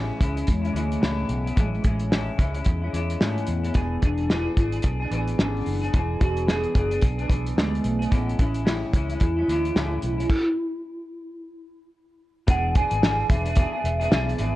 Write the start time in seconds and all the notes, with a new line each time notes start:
Already playing: A2 E3 G#3 C#4 E4
0.18 C#2 E3 G#3 C#4 E4, kick, closed hi-hat
0.35 G#3 C#4 E4, closed hi-hat
0.47 E2 G#3, kick, closed hi-hat
0.62 C#4 E4, closed hi-hat
0.66 G#3
0.73 D2 E3 G#3 A3 C#4 E4, closed hi-hat
0.92 closed hi-hat
1.00 C#2 A2 E3 G#3 C#4 E4, snare
1.29 B1 B3, closed hi-hat
1.44 G#3 C#4 E4, closed hi-hat
1.55 A1 A2 E3 G#3 C#4 E4, kick, closed hi-hat
1.66 F#3
1.75 G#3, closed hi-hat
1.83 A1 E3 G#3 C#4 E4, kick, closed hi-hat
2.00 closed hi-hat
2.11 A2 E3 G#3 C#4 E4, snare
2.38 C#2 E3 G#3 C#4 E4, kick, closed hi-hat
2.54 G#3 C#4 E4, closed hi-hat
2.64 E2, kick, closed hi-hat
2.81 G#3 C#4 E4
2.92 E2 E3 G#3 C#4 E4, closed hi-hat
3.10 closed hi-hat
3.20 G#2 A2 E3 G#3 A3 C#4 E4, snare
3.38 closed hi-hat
3.47 E2 B3, closed hi-hat
3.63 G#3 C#4 E4, closed hi-hat
3.74 E1 E3 B3 D4 G#4, kick, closed hi-hat
4.01 E1 E3 B3 D4 G#4, kick, closed hi-hat
4.17 closed hi-hat
4.29 E3 B3 D4 E4 G#4, snare
4.56 G#1 E3 B3 D4 E4 G#4, kick, closed hi-hat
4.72 D4 G#4, closed hi-hat
4.77 B3
4.82 B1, kick, closed hi-hat
5.00 D4 G#4
5.05 B3
5.11 A1 E3 B3 D4 G#4, closed hi-hat
5.27 closed hi-hat
5.38 G#1 E3 B3 C#4 D4 G#4, snare
5.57 closed hi-hat
5.66 F#1 D4, open hi-hat
5.81 D4 G#4, closed hi-hat
5.85 B3
5.93 E1 E3 B3 D4 E4 G#4, kick, closed hi-hat
6.20 E1 E3 B3 D4 F#4 G#4, kick, closed hi-hat
6.37 closed hi-hat
6.47 E3 B3 D4 G#4, snare
6.64 closed hi-hat
6.74 F#1 E3 B3 D4 G#4, kick, closed hi-hat
6.78 G#4
6.91 B3 D4 G#4, closed hi-hat
7.02 B1, kick, closed hi-hat
7.18 B3 D4 G#4, closed hi-hat
7.28 B1 E3 B3 D4 G#4, kick, closed hi-hat
7.46 closed hi-hat
7.56 D2 E3 B3 D4 G#4, snare
7.60 G#3
7.75 closed hi-hat
7.84 B1 A3, closed hi-hat
7.99 B3 D4 G#4, closed hi-hat
8.11 A1 A2 E3 G#3 B3 C#4 E4, kick, closed hi-hat
8.30 closed hi-hat
8.38 A1 E3 G#3 C#4 E4, kick, closed hi-hat
8.55 closed hi-hat
8.64 A2 E3 G#3 C#4 E4, snare
8.93 C#2 E3 G#3 C#4 E4, kick, closed hi-hat
9.09 G#3 C#4 E4, closed hi-hat
9.20 E2 E4, kick, closed hi-hat
9.36 C#4 E4
9.40 G#3
9.48 D2 E3 G#3 C#4, closed hi-hat
9.52 E4
9.65 closed hi-hat
9.75 C#2 A2 E3 G#3 C#4 E4, snare
10.02 B1, closed hi-hat
10.18 G#3 C#4 E4, closed hi-hat
10.30 kick, crash
12.47 E1 E3 B3 D4 G#4 F#5, kick, closed hi-hat
12.75 E3 B3 D4 G#4 G#5, kick, closed hi-hat
12.90 G#1 B3 D4 G#4, closed hi-hat
13.01 E3 B3 D4 G#4, snare
13.29 E1 E3 B3 D4 G#4 E5, kick, closed hi-hat
13.45 D4 G#4, closed hi-hat
13.49 B3
13.55 E3 B3 D4, kick, closed hi-hat
13.60 G#4
13.73 D4 G#4
13.77 B3
13.84 E1, closed hi-hat
14.00 B3 D4 G#4, closed hi-hat
14.11 B1 E3 B3 D4 G#4, snare
14.29 closed hi-hat
14.38 G#1 E3 B3 D4 G#4 E5, closed hi-hat